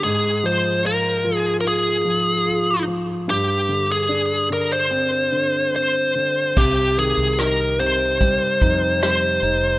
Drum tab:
CC |--------|--------|x-------|
HH |--------|--------|-xxxxxxx|
SD |--------|--------|--r---r-|
BD |--------|--------|o---oo--|